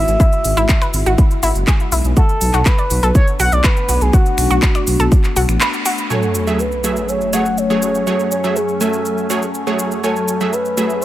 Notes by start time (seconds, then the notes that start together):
Already playing: G#3 E4 F#4 E5
0.08 G#1, closed hi-hat, shaker
0.20 E4, kick, closed hi-hat, shaker
0.32 closed hi-hat, shaker
0.45 G#1, open hi-hat, shaker
0.57 G#1 E4, closed hi-hat, shaker
0.69 kick, clap, closed hi-hat, shaker
0.82 B4, finger snap, closed hi-hat, shaker
0.94 G#1, open hi-hat, shaker
1.06 G#1 F#4, closed hi-hat, shaker
1.18 kick, closed hi-hat, shaker
1.31 closed hi-hat, shaker
1.43 G#1 E4, open hi-hat, shaker
1.55 F#1, closed hi-hat, shaker
1.67 G#4, kick, clap, closed hi-hat, shaker
1.80 closed hi-hat, shaker
1.92 B1 E4, open hi-hat, shaker
2.05 B1, closed hi-hat, shaker
2.17 A3 B3 D4 F#4 A4, kick, closed hi-hat, shaker
2.29 closed hi-hat, shaker
2.41 B1, open hi-hat, shaker
2.53 B1 F#4, clap, closed hi-hat, shaker
2.65 B4, kick, clap, closed hi-hat, shaker
2.78 D5, closed hi-hat, shaker
2.90 B1, open hi-hat, shaker
3.03 B1 A4, closed hi-hat, shaker
3.15 C#5, kick, closed hi-hat, shaker
3.27 closed hi-hat, shaker
3.40 B1 F#4 F#5, open hi-hat, shaker
3.52 B1 D5, closed hi-hat, shaker
3.64 B4, kick, clap, closed hi-hat, shaker
3.77 closed hi-hat, shaker
3.89 B1 F#4, open hi-hat, shaker
4.01 B1 G#4, closed hi-hat, shaker
4.13 F#4, kick, closed hi-hat, shaker
4.26 closed hi-hat, shaker
4.38 B1, finger snap, open hi-hat, shaker
4.50 B1 F#4, closed hi-hat, shaker
4.62 kick, clap, closed hi-hat, shaker
4.75 D5, finger snap, closed hi-hat, shaker
4.87 B1, open hi-hat, shaker
5.00 B1 A4, closed hi-hat, shaker
5.12 kick, closed hi-hat, shaker
5.24 clap, closed hi-hat, shaker
5.36 B1 F#4, open hi-hat, shaker
5.49 A1, finger snap, closed hi-hat, shaker
5.61 B4, clap, closed hi-hat, shaker
5.73 closed hi-hat, shaker
5.86 F#4, open hi-hat, shaker
5.98 closed hi-hat, shaker
6.10 F#2 F#3 A3 C#4 A4 C#5 G#5, sub drop, shaker
6.23 shaker
6.35 shaker
6.47 F#3 A3 G#4 E5, shaker
6.59 B4, shaker
6.72 shaker
6.84 F#3 A3 G#4 E5, shaker
6.96 shaker
7.08 C#5, shaker
7.21 shaker
7.33 F#3 A3 G#4 C#5 F#5, shaker
7.46 shaker
7.58 C#5, shaker
7.70 F#3 A3 G#4 C#5, shaker
7.82 C#5, shaker
7.95 shaker
8.07 F#3 A3 G#4 C#5, shaker
8.19 shaker
8.31 C#5, shaker
8.44 F#3 A3 G#4 E5, shaker
8.56 G#4, shaker
8.69 shaker
8.81 F#3 A3 A4 E5 G#5, shaker
8.93 shaker
9.05 shaker
9.18 shaker
9.30 F#3 A3 G#4 C#5, shaker
9.42 shaker
9.54 shaker
9.67 F#3 A3 G#4 C#5, shaker
9.79 shaker
9.91 shaker
10.04 F#3 A3 A4 C#5 G#5, shaker
10.16 shaker
10.28 shaker
10.41 F#3 A3 G#4 E5, shaker
10.53 B4, shaker
10.65 shaker
10.77 F#3 A3 G#4 E5, shaker
10.90 shaker